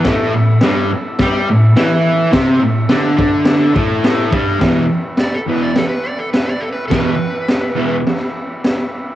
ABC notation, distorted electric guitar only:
X:1
M:4/4
L:1/8
Q:1/4=105
K:Em
V:1 name="Distorted electric guitar" clef=bass
[A,,A,] A,, [G,,G,] z [G,G] A,, [E,E]2 | [C,C] A,, [D,D] [D,D]2 [A,,A,]2 [G,,G,] | [E,,B,,E,] z2 [E,,B,,E,] z4 | [E,,B,,E,] z2 [E,,B,,E,] z4 |]